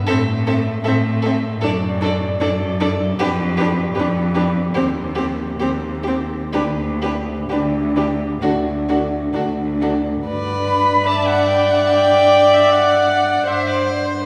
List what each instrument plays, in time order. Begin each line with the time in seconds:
0.07 cello A2, viola C4, violin A4 E5
0.47 viola C4, violin A4 E5
0.84 cello A2, viola C4, violin A4 E5
1.22 viola C4, violin A4 E5
1.61 cello F#2, viola D4, violin A4
1.66 violin D5
2.01 viola D4, violin A4 D5
2.39 cello F#2, viola D4, violin A4 D5
2.80 viola D4, violin A4 D5
3.18 cello F2, viola D4, violin G4 B4
3.57 viola D4, violin G4 B4
3.95 cello F2, violin G4 B4
3.99 viola D4
4.34 viola D4, violin G4 B4
4.74 cello D#2, viola C4, violin G4 C5
5.15 viola C4, violin G4 C5
5.59 cello D#2, viola C4, violin G4 C5
6.03 violin G4 C5
6.08 viola C4
6.53 cello D2, viola D4, violin G4 B4
7.02 viola D4, violin G4 B4
7.49 cello D2, viola D4, violin G4 B4
7.95 viola D4, violin G4 B4
8.41 cello D2, viola D4, violin F#4 A4
8.88 viola D4, violin F#4 A4
9.33 cello D2, viola D4, violin F#4 A4
9.80 viola D4, violin F#4 A4
10.25 cello G2, viola B4, violin D5
10.64 violin B5
11.06 viola D5, violin E5 A5
11.27 violin F#5
11.47 violin G5
11.71 violin F#5
11.90 violin G5
12.53 violin E5
12.71 violin D5 F#5
13.46 cello G2, violin C5 E5, viola C5
13.67 violin D5
13.87 violin C5